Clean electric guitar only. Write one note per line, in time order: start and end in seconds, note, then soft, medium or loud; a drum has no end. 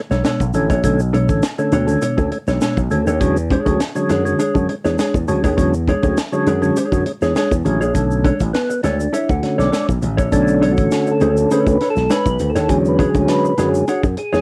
0.11 0.23 D4 soft
0.11 0.22 A4 medium
0.11 0.22 C#5 medium
0.25 0.41 D4 medium
0.25 0.41 A4 medium
0.25 0.42 C#5 medium
0.54 muted clean electric guitar stroke soft
0.70 0.82 D4 soft
0.70 0.82 A4 medium
0.70 0.81 C#5 medium
1.13 1.30 D4 medium
1.13 1.30 A4 medium
1.13 1.30 C#5 medium
1.59 muted clean electric guitar stroke soft
1.72 1.89 D4 loud
1.72 1.88 A4 medium
1.72 1.87 C#5 loud
1.88 muted clean electric guitar stroke soft
2.02 2.18 D4 medium
2.02 2.19 A4 medium
2.02 2.19 C#5 medium
2.32 muted clean electric guitar stroke soft
2.48 2.60 D4 medium
2.48 2.59 A4 medium
2.48 2.59 C#5 medium
2.62 2.78 D4 medium
2.62 2.78 A4 medium
2.62 2.78 C#5 medium
2.92 muted clean electric guitar stroke soft
3.07 3.19 D4 medium
3.07 3.19 A4 medium
3.07 3.18 C#5 medium
3.51 3.71 D4 medium
3.51 3.72 G#4 medium
3.51 3.72 C#5 loud
3.96 muted clean electric guitar stroke soft
4.10 4.26 D4 medium
4.10 4.25 G#4 loud
4.10 4.25 C#5 loud
4.39 4.56 D4 medium
4.39 4.56 G#4 medium
4.39 4.56 C#5 medium
4.69 muted clean electric guitar stroke soft
4.84 4.96 D4 medium
4.84 4.96 G#4 medium
4.84 4.96 C#5 medium
4.99 5.15 D4 medium
4.99 5.15 G#4 medium
4.99 5.15 C#5 medium
5.29 muted clean electric guitar stroke soft
5.44 5.56 D4 medium
5.44 5.56 G#4 medium
5.44 5.55 C#5 medium
5.88 6.04 D4 medium
5.88 6.04 G#4 medium
5.88 6.05 C#5 loud
6.33 muted clean electric guitar stroke soft
6.47 6.63 D4 medium
6.47 6.63 G#4 medium
6.47 6.62 C#5 medium
6.63 muted clean electric guitar stroke soft
6.77 6.97 D4 medium
6.77 6.98 G#4 medium
6.77 6.98 C#5 medium
7.06 muted clean electric guitar stroke soft
7.22 7.34 D4 soft
7.22 7.34 G#4 medium
7.22 7.33 C#5 medium
7.36 7.52 D4 medium
7.36 7.52 G#4 medium
7.36 7.53 C#5 loud
7.65 muted clean electric guitar stroke soft
7.81 7.93 D4 soft
7.81 7.93 G#4 medium
7.81 7.92 C#5 medium
8.24 8.41 D4 medium
8.24 8.41 A4 medium
8.24 8.41 C#5 loud
8.70 muted clean electric guitar stroke soft
8.84 9.00 D4 medium
8.84 8.99 A4 medium
8.84 8.98 C#5 medium
9.00 muted clean electric guitar stroke soft
9.13 9.30 D4 medium
9.13 9.30 A4 medium
9.13 9.30 C#5 medium
9.43 muted clean electric guitar stroke soft
9.58 9.71 D4 medium
9.58 9.70 A4 medium
9.58 9.70 C#5 medium
9.72 9.89 D4 medium
9.72 9.89 A4 medium
9.72 9.89 C#5 medium
10.02 muted clean electric guitar stroke soft
10.17 10.30 D4 soft
10.17 10.29 A4 medium
10.17 10.29 C#5 medium
10.61 10.78 D4 medium
10.61 10.78 A4 medium
10.61 10.78 C#5 medium
11.07 muted clean electric guitar stroke soft
11.21 11.42 D4 medium
11.21 11.36 A4 medium
11.21 11.35 C#5 medium
11.37 muted clean electric guitar stroke soft
11.51 11.72 D4 medium
11.51 11.66 A4 medium
11.51 11.65 C#5 medium
11.67 muted clean electric guitar stroke medium
11.81 11.93 D4 medium
11.81 11.94 A4 medium
11.81 11.94 C#5 medium
11.97 muted clean electric guitar stroke soft
12.10 12.26 D4 medium
12.10 12.27 A4 medium
12.10 12.27 C#5 medium
12.40 muted clean electric guitar stroke soft
12.55 12.67 D4 medium
12.55 12.67 A4 medium
12.55 12.67 C#5 medium
12.99 13.15 D4 medium
12.99 13.16 G#4 medium
12.99 13.16 C#5 medium
13.44 muted clean electric guitar stroke soft
13.58 13.74 D4 medium
13.58 13.73 G#4 loud
13.58 13.73 C#5 loud
13.74 muted clean electric guitar stroke soft
13.88 14.04 D4 medium
13.88 14.04 G#4 medium
13.88 14.05 C#5 medium
14.17 muted clean electric guitar stroke soft
14.33 14.41 D4 medium
14.33 14.41 G#4 medium
14.33 14.41 C#5 medium